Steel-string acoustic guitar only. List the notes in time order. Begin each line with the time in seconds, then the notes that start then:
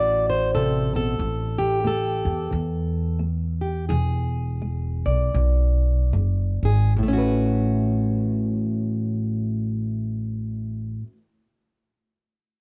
Already playing: A2 F#4 D5
0.30 C5
0.55 C3 A4
0.95 B2 A4
1.19 A2
1.59 G4
1.85 A3 A4
2.51 E3
3.19 A3
3.61 G4
3.89 E3 G#4
4.62 G#3
5.06 D5
5.35 B2
6.13 G#3
6.65 G#4
6.98 A2
7.03 A3
7.08 C#4
7.13 F#4
7.18 B4